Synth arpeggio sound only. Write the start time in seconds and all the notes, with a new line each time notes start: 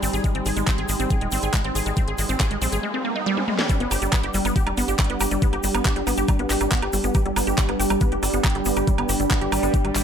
0.03 C4
0.13 G#4
0.24 G#3
0.35 C4
0.46 G#4
0.57 G#3
0.67 C4
0.78 G#4
0.89 G#3
1.00 C4
1.10 G#4
1.21 G#3
1.32 C4
1.43 G#4
1.54 G#3
1.64 C4
1.75 G#4
1.86 G#3
1.97 C4
2.08 G#4
2.18 G#3
2.29 C4
2.40 G#4
2.51 G#3
2.62 C4
2.72 G#4
2.83 G#3
2.94 C4
3.05 A#3
3.15 D#4
3.26 G3
3.37 G#3
3.48 G#3
3.59 G3
3.69 G3
3.80 B3
3.91 G4
4.02 G3
4.13 B3
4.23 G4
4.34 G3
4.45 B3
4.56 G4
4.67 G3
4.77 B3
4.88 G4
4.99 G3
5.10 B3
5.21 G4
5.31 G3
5.42 B3
5.53 G4
5.64 G3
5.74 B3
5.85 G4
5.96 G3
6.07 B3
6.18 G4
6.28 G3
6.39 B3
6.50 G4
6.61 G3
6.72 B3
6.82 G4
6.93 G3
7.04 B3
7.15 G4
7.26 G3
7.36 B3
7.47 G4
7.58 G3
7.69 B3
7.79 G4
7.90 G3
8.01 B3
8.12 G4
8.23 G3
8.34 B3
8.44 G4
8.55 G3
8.66 B3
8.77 G4
8.87 G3
8.98 B3
9.09 G4
9.20 G3
9.31 B3
9.41 G4
9.52 G3
9.63 B3
9.74 G4
9.85 G3
9.95 G3